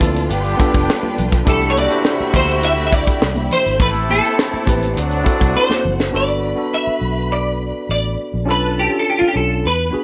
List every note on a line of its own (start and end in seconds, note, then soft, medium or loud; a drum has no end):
0.00 0.27 D2 medium
0.00 0.29 D3 medium
0.00 0.29 C4 medium
0.00 0.30 E4 medium
0.00 0.28 F4 medium
0.00 1.44 F4 medium
0.00 0.30 F4 medium
0.00 0.31 A4 medium
0.00 0.26 B4 medium
0.00 0.28 D5 medium
0.00 0.28 A5 medium
0.00 kick medium
0.00 closed hi-hat medium
0.00 high conga medium
0.00 low conga medium
0.16 closed hi-hat medium
0.30 0.56 G1 loud
0.30 1.16 D3 medium
0.30 1.45 G3 medium
0.30 1.16 B3 medium
0.30 1.45 D4 medium
0.30 1.16 G4 medium
0.30 1.46 B4 medium
0.30 1.44 B4 medium
0.30 1.44 G5 medium
0.30 closed hi-hat medium
0.44 closed hi-hat soft
0.44 muted conga soft
0.57 1.40 B3 medium
0.57 1.41 D4 medium
0.57 1.41 F4 medium
0.57 1.42 A4 medium
0.57 kick loud
0.57 closed hi-hat medium
0.74 0.87 F1 loud
0.74 kick medium
0.74 closed hi-hat medium
0.89 snare loud
0.89 muted conga soft
1.03 muted conga soft
1.03 high conga medium
1.18 1.44 B1 loud
1.18 closed hi-hat medium
1.18 low conga medium
1.32 kick medium
1.32 snare soft
1.32 closed hi-hat medium
1.45 1.86 C2 loud
1.45 3.47 C3 medium
1.45 3.79 C3 medium
1.45 3.47 A3 medium
1.45 4.94 A3 medium
1.45 1.87 D4 loud
1.45 1.87 E4 loud
1.45 3.79 E4 medium
1.45 3.47 F#4 medium
1.45 1.88 G4 loud
1.45 3.76 G4 medium
1.45 1.88 A4 loud
1.45 3.76 E5 medium
1.45 3.76 B5 medium
1.45 kick loud
1.45 closed hi-hat loud
1.45 muted conga soft
1.45 low conga medium
1.50 1.69 A4 medium
1.61 closed hi-hat soft
1.61 muted conga soft
1.70 1.76 C#5 medium
1.77 2.35 D5 loud
1.77 closed hi-hat medium
1.77 high conga medium
1.89 2.99 D4 medium
1.89 3.00 E4 medium
1.89 3.00 G4 medium
1.89 3.00 C5 medium
1.89 closed hi-hat medium
2.05 snare loud
2.05 muted conga soft
2.20 muted fingered electric bass stroke soft
2.20 muted conga soft
2.20 high conga soft
2.34 3.03 D2 loud
2.34 2.64 C5 medium
2.34 kick loud
2.34 closed hi-hat medium
2.34 high conga medium
2.34 low conga medium
2.49 closed hi-hat medium
2.63 2.86 E5 loud
2.63 closed hi-hat loud
2.77 closed hi-hat soft
2.77 muted conga soft
2.87 2.93 E5 medium
2.93 3.52 D5 loud
2.93 kick loud
2.93 closed hi-hat medium
3.07 kick medium
3.07 closed hi-hat medium
3.22 3.48 C2 loud
3.22 snare loud
3.22 muted conga soft
3.36 closed hi-hat soft
3.36 muted conga soft
3.36 high conga medium
3.51 3.79 C5 loud
3.51 closed hi-hat medium
3.51 low conga medium
3.65 3.79 G#1 medium
3.65 closed hi-hat soft
3.80 4.19 A1 loud
3.80 4.66 C3 medium
3.80 4.66 A3 medium
3.80 6.12 C4 medium
3.80 4.66 E4 medium
3.80 4.95 E4 medium
3.80 4.96 G4 medium
3.80 3.89 B4 loud
3.80 4.95 C5 medium
3.80 4.95 A5 medium
3.80 kick loud
3.80 closed hi-hat loud
3.80 low conga medium
3.93 closed hi-hat soft
3.93 muted conga soft
4.10 5.81 A4 medium
4.10 closed hi-hat medium
4.10 high conga medium
4.25 closed hi-hat medium
4.38 snare loud
4.38 muted conga soft
4.53 muted fingered electric bass stroke soft
4.53 muted conga soft
4.53 high conga soft
4.66 4.93 A1 loud
4.66 4.96 C4 medium
4.66 4.96 E4 medium
4.66 4.97 G4 medium
4.66 4.97 B4 medium
4.66 kick loud
4.66 closed hi-hat medium
4.66 high conga medium
4.66 low conga medium
4.83 closed hi-hat medium
4.96 5.23 D2 loud
4.96 5.83 A2 medium
4.96 6.12 D3 medium
4.96 5.83 F#3 medium
4.96 6.11 D4 medium
4.96 5.83 D4 medium
4.96 6.13 F#4 medium
4.96 6.11 C5 medium
4.96 6.11 F#5 medium
4.96 closed hi-hat loud
5.11 closed hi-hat soft
5.24 6.07 C4 medium
5.24 6.07 E4 medium
5.24 6.08 F#4 medium
5.24 6.08 A4 loud
5.24 kick loud
5.24 closed hi-hat medium
5.41 5.54 C2 medium
5.41 kick medium
5.41 closed hi-hat soft
5.56 6.16 C5 medium
5.56 muted conga soft
5.70 snare medium
5.70 high conga medium
5.85 6.11 F#1 medium
5.85 low conga medium
6.00 snare medium
6.11 6.53 G1 medium
6.11 6.54 B3 medium
6.11 6.54 D4 medium
6.11 6.55 F#4 medium
6.11 6.55 A4 medium
6.11 8.14 B4 medium
6.11 8.14 B5 medium
6.16 6.69 D5 medium
6.55 7.66 B3 medium
6.55 7.67 D4 medium
6.55 7.67 F#4 medium
6.55 7.68 A4 medium
6.74 7.32 E5 medium
6.87 muted fingered electric bass stroke soft
7.01 7.71 B1 medium
7.32 7.90 D5 medium
7.89 8.15 A1 medium
7.89 8.50 D5 medium
8.34 8.48 A#1 medium
8.45 8.87 B1 medium
8.45 8.88 C#4 loud
8.45 8.88 D4 medium
8.45 8.88 F4 medium
8.45 9.34 A4 medium
8.45 8.89 A4 loud
8.45 9.34 A5 medium
8.51 8.79 B4 medium
8.79 8.99 G4 medium
8.89 9.31 C#4 medium
8.89 9.32 D4 medium
8.89 9.32 F4 medium
8.89 9.33 A4 medium
8.99 9.08 A4 medium
9.10 9.18 G4 medium
9.19 9.27 F4 medium
9.19 muted fingered electric bass stroke soft
9.28 9.36 G4 medium
9.34 9.61 B1 medium
9.34 9.64 C#4 medium
9.34 9.64 D4 medium
9.34 9.64 F4 medium
9.34 9.65 A4 medium
9.34 9.66 A4 medium
9.64 9.91 E2 loud
9.64 10.04 B4 medium
9.64 10.04 B5 medium
9.91 10.04 B3 medium
9.91 10.04 D4 medium
9.91 10.04 F#4 medium
9.91 10.04 G#4 medium
9.91 muted fingered electric bass stroke soft